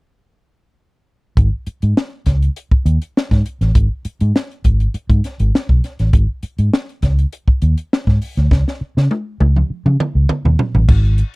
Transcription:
1.37 fingered electric bass G#1, kick, closed hi-hat
1.67 muted fingered electric bass stroke, closed hi-hat
1.82 fingered electric bass G#2, closed hi-hat
1.97 snare
2.26 fingered electric bass C#2, kick, snare, closed hi-hat
2.42 closed hi-hat
2.56 closed hi-hat
2.71 muted fingered electric bass stroke, kick
2.86 fingered electric bass D#2, closed hi-hat
3.02 closed hi-hat
3.17 snare
3.31 fingered electric bass G#2, kick, snare, closed hi-hat
3.46 closed hi-hat
3.61 fingered electric bass A1, snare, closed hi-hat
3.75 fingered electric bass G#1, kick, closed hi-hat
4.05 muted fingered electric bass stroke, closed hi-hat
4.20 fingered electric bass G#2, closed hi-hat
4.36 snare
4.51 closed hi-hat
4.64 fingered electric bass G#1, kick, closed hi-hat
4.80 closed hi-hat
4.94 muted fingered electric bass stroke, closed hi-hat
5.09 fingered electric bass G#2, kick, closed hi-hat
5.24 snare, closed hi-hat
5.40 fingered electric bass G#1, closed hi-hat
5.55 snare
5.69 fingered electric bass B1, kick
5.84 snare, closed hi-hat
5.99 fingered electric bass A1, snare, closed hi-hat
6.13 fingered electric bass G#1, kick, closed hi-hat
6.43 muted fingered electric bass stroke, closed hi-hat
6.58 fingered electric bass G#2, closed hi-hat
6.73 snare
6.89 closed hi-hat
7.02 fingered electric bass C#2, kick, snare, closed hi-hat
7.19 closed hi-hat
7.33 closed hi-hat
7.48 muted fingered electric bass stroke, kick
7.62 fingered electric bass D#2, closed hi-hat
7.78 closed hi-hat
7.93 snare
8.07 fingered electric bass G#2, kick, snare
8.22 open hi-hat
8.37 fingered electric bass D2, snare, closed hi-hat
8.51 fingered electric bass C#2, kick, snare
8.68 snare
8.81 muted fingered electric bass stroke
8.97 fingered electric bass C#3, snare
9.11 high tom
9.40 fingered electric bass C#2, high tom
9.56 mid tom
9.70 muted fingered electric bass stroke
9.86 fingered electric bass C#3, mid tom
10.00 mid tom
10.15 fingered electric bass C#2
10.29 mid tom
10.45 fingered electric bass D#2, floor tom
10.59 floor tom
10.75 fingered electric bass A1, floor tom
10.88 fingered electric bass G#1, kick, crash
11.05 closed hi-hat
11.18 closed hi-hat

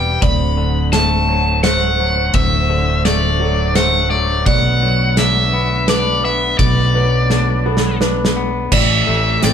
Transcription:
Already playing: fingered electric bass E1, string section C3 G3 E4 D5, clean electric guitar C3 G3 B3, felt piano B4, overdriven electric guitar G5
0.22 fingered electric bass D1, clean electric guitar D2, string section D3 A3 F#4 C5, felt piano D5, overdriven electric guitar B5, kick, ride
0.57 clean electric guitar D3
0.93 clean electric guitar A3, overdriven electric guitar A5, snare, ride
1.29 clean electric guitar F#3
1.63 clean electric guitar A3, felt piano C5, overdriven electric guitar F#5, snare, ride
2.00 clean electric guitar F#3
2.34 fingered electric bass D1, clean electric guitar D2, overdriven electric guitar E5, kick, ride
2.69 clean electric guitar D3, felt piano C5
3.05 clean electric guitar A3, overdriven electric guitar D5, snare, ride
3.40 clean electric guitar F#3, felt piano A4
3.75 clean electric guitar A3, felt piano C5, overdriven electric guitar F#5, snare, ride
4.11 clean electric guitar F#3, overdriven electric guitar D5
4.46 fingered electric bass B1, clean electric guitar B2, string section B4, felt piano D5, overdriven electric guitar F#5, kick, ride
4.83 clean electric guitar F#3
5.17 clean electric guitar D4, overdriven electric guitar E5, snare, ride
5.53 clean electric guitar B3
5.88 clean electric guitar D4, felt piano B4, overdriven electric guitar D5, snare, ride
6.24 clean electric guitar B3, overdriven electric guitar E5
6.59 fingered electric bass B1, clean electric guitar B2, overdriven electric guitar D5, kick, ride
6.95 clean electric guitar F#3, felt piano B4
7.30 clean electric guitar D4, snare
7.66 clean electric guitar B3, felt piano A4
7.77 snare
8.01 clean electric guitar D4, felt piano B4, snare
8.25 snare
8.36 clean electric guitar B3
8.72 fingered electric bass A1, clean electric guitar A2, string section E3 C4 G4 A4, felt piano D5, overdriven electric guitar E5, kick, crash
9.07 fingered electric bass A1, clean electric guitar A3
9.43 fingered electric bass A1, clean electric guitar C4, overdriven electric guitar D5, snare, closed hi-hat

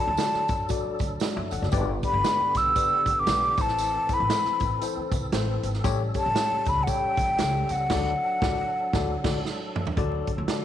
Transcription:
Already playing: tine electric piano D3, tonewheel organ F#3 D4 A4, flute A5
0.07 upright bass D2
0.17 tine electric piano F#4 A4 D5, snare, closed hi-hat, tambourine
0.34 muted upright bass stroke, snare
0.48 upright bass F#2, kick, closed hi-hat, tambourine
0.69 tine electric piano F#4 A4 D5, kick, closed hi-hat, tambourine
0.85 muted upright bass stroke
0.99 upright bass D2, kick, closed hi-hat, tambourine
1.20 tine electric piano F#4 D5, snare, closed hi-hat, tambourine
1.36 upright bass F#2, tine electric piano E5
1.51 upright bass F1, tine electric piano A4 F#5, closed hi-hat, tambourine
1.62 upright bass F#1, tine electric piano F#4 D5, snare
1.72 upright bass G1, tine electric piano G2 G4 B4 D5, tonewheel organ D3 B3 G4, kick, closed hi-hat, tambourine
2.03 tine electric piano G4 B4 D5, flute B5, kick, closed hi-hat, tambourine
2.13 upright bass G1
2.24 tine electric piano G4 B4 D5, snare, closed hi-hat, tambourine
2.40 muted upright bass stroke
2.54 upright bass B1, flute E6, kick, snare, closed hi-hat, tambourine
2.75 tine electric piano G4 B4 D5, kick, closed hi-hat, tambourine
2.90 muted upright bass stroke
3.06 upright bass G1, kick, closed hi-hat, tambourine
3.20 flute D6
3.27 upright bass B1, tine electric piano G4 B4 D5, snare, closed hi-hat, tambourine
3.57 upright bass A1, tine electric piano A2 E4 A4 C5, tonewheel organ E3 C4 A4, flute A5, kick, closed hi-hat, tambourine
3.68 snare
3.78 closed hi-hat, tambourine
4.09 tine electric piano E4 A4 C5, kick, closed hi-hat, tambourine
4.13 flute B5
4.20 upright bass A1
4.29 tine electric piano E4 A4 C5, snare, closed hi-hat, tambourine
4.45 muted upright bass stroke, snare
4.60 upright bass A1, kick, closed hi-hat, tambourine
4.81 tine electric piano E4 A4 C5, closed hi-hat, tambourine
4.97 muted upright bass stroke
5.12 upright bass C2, kick, closed hi-hat, tambourine
5.32 upright bass A1, tine electric piano E4 A4 C5, snare, closed hi-hat, tambourine
5.63 upright bass G#1, closed hi-hat, tambourine
5.74 snare
5.84 upright bass A1, tine electric piano A2 G4 A4 C#5, tonewheel organ G3 C#4, kick, closed hi-hat, tambourine
6.14 tine electric piano G4 A4 C#5, flute A5, kick, closed hi-hat, tambourine
6.26 upright bass A1
6.35 tine electric piano G4 A4 C#5, snare, closed hi-hat, tambourine
6.52 muted upright bass stroke
6.65 upright bass C#2, flute B5, kick, closed hi-hat, tambourine
6.83 tine electric piano G4 A4, flute F#5, kick, closed hi-hat
6.88 tine electric piano C#5, flute G5, tambourine
7.03 muted upright bass stroke
7.17 upright bass A1, kick, closed hi-hat, tambourine
7.38 upright bass C#2, tine electric piano G4 A4 C#5, snare, closed hi-hat, tambourine
7.69 upright bass C#2, flute F#5, closed hi-hat, tambourine
7.90 upright bass D2, tine electric piano D3 F#4 A4 D5, tonewheel organ F#3 D4, kick, snare, crash
8.42 upright bass D2, tine electric piano F#4 A4 D5, kick, snare
8.93 upright bass D2, tine electric piano F#4 A4 D5, kick, snare
9.24 upright bass D2, tine electric piano F#4 A4 D5, kick, snare, crash
9.45 snare
9.76 mid tom
9.87 floor tom
9.96 upright bass D2, tine electric piano D3 F#4 A4 D5, tonewheel organ F#3 D4 A4, kick, closed hi-hat
10.27 kick, closed hi-hat
10.38 upright bass D2
10.48 tine electric piano F#4 A4 D5, snare, closed hi-hat

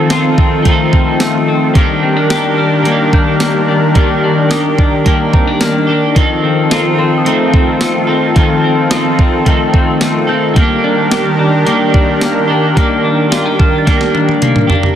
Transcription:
Already playing: clean electric guitar D#3 A3 C4 D#4 A4, analog synth pad D#3 C4 F4 A4
0.08 clean electric guitar F3 C4 D#4 F4, snare, closed hi-hat, tambourine
0.14 clean electric guitar A4
0.38 clean electric guitar C4, kick
0.62 clean electric guitar F3 A3 C4, kick, closed hi-hat
0.69 clean electric guitar D#4 A4
0.93 clean electric guitar C4, kick
1.20 clean electric guitar A3, snare, closed hi-hat, tambourine
1.48 clean electric guitar C4
1.74 clean electric guitar D#3 G3 A#3 D4 G4, analog synth pad D4 G4 A#4, kick, closed hi-hat
2.03 clean electric guitar C4
2.17 clean electric guitar D4
2.29 clean electric guitar G3 A#3 G4, snare, closed hi-hat, tambourine
2.33 clean electric guitar D4 G4
2.58 clean electric guitar D4, celesta F6
2.83 clean electric guitar D#3 G3 A#3, closed hi-hat
2.88 clean electric guitar A#3 D4
2.92 clean electric guitar G4
3.13 clean electric guitar D4, celesta G6, kick
3.40 clean electric guitar A#3, snare, closed hi-hat, tambourine
3.68 clean electric guitar D4
3.94 clean electric guitar D#3 G3 A#3 D4 G4, kick, closed hi-hat
4.24 clean electric guitar D4
4.49 clean electric guitar G3 A#3 D4 G4, celesta D#6, snare, closed hi-hat, tambourine
4.55 clean electric guitar G4
4.79 clean electric guitar D4, kick
5.05 clean electric guitar D#3 G3 A#3 D4 G4, kick, closed hi-hat
5.33 clean electric guitar C4, celesta A#5, kick
5.47 clean electric guitar D4
5.61 clean electric guitar A#3, snare, closed hi-hat, tambourine
5.87 clean electric guitar D4 G4
5.92 clean electric guitar A#3
6.15 clean electric guitar D#3 F3 C4 D#4 A4, analog synth pad C4 F4 A4, kick, closed hi-hat
6.44 clean electric guitar C4
6.69 clean electric guitar F3 C4 F4, snare, closed hi-hat, tambourine
6.73 clean electric guitar D#4 A4
6.98 clean electric guitar C4, celesta C6
7.18 celesta D#6
7.25 clean electric guitar F3 A3 C4 D#4 A4, closed hi-hat
7.54 clean electric guitar C4, kick
7.81 clean electric guitar A3, snare, closed hi-hat, tambourine
8.07 clean electric guitar C4 D#4 A4
8.13 clean electric guitar C4
8.35 clean electric guitar D#3 F3 C4 D#4, kick, closed hi-hat
8.39 clean electric guitar A4
8.64 clean electric guitar C4
8.90 clean electric guitar F3 C4 F4, celesta D#6, snare, closed hi-hat, tambourine
8.94 clean electric guitar D#4 A4
9.19 clean electric guitar C4, kick
9.45 clean electric guitar F3 A3 C4 D#4 A4, kick, closed hi-hat
9.74 clean electric guitar C4, kick
10.01 clean electric guitar A3, snare, closed hi-hat, tambourine
10.27 clean electric guitar C4 D#4 A4, celesta G6
10.33 clean electric guitar C4
10.54 clean electric guitar D#3 G3 A#3, analog synth pad D#3 D4 G4 A#4, kick, closed hi-hat
10.59 clean electric guitar A#3 D4
10.63 clean electric guitar G4
10.84 clean electric guitar D4
11.11 clean electric guitar G4, snare, closed hi-hat, tambourine
11.39 clean electric guitar D4
11.65 clean electric guitar D#3 G3 A#3 D4 G4, closed hi-hat
11.94 clean electric guitar D4, kick
12.21 clean electric guitar A#3, snare, closed hi-hat, tambourine
12.48 clean electric guitar D4 G4
12.53 clean electric guitar A#3
12.75 clean electric guitar D#3 G3 A#3 D4 G4, kick, closed hi-hat
13.04 clean electric guitar D4
13.30 clean electric guitar G3 A#3 D4 F4, snare, closed hi-hat, tambourine
13.35 clean electric guitar G4
13.46 clean electric guitar G4
13.59 clean electric guitar D4, celesta F6, kick
13.78 celesta A6
13.85 clean electric guitar D#3 G3 A#3 D4, kick, snare, closed hi-hat
13.89 clean electric guitar G4
13.97 celesta A#6, snare
14.14 clean electric guitar D4, high tom
14.29 high tom
14.42 clean electric guitar A#3, closed hi-hat, mid tom
14.56 mid tom
14.67 clean electric guitar D4 G4, floor tom
14.73 clean electric guitar A#3
14.83 floor tom

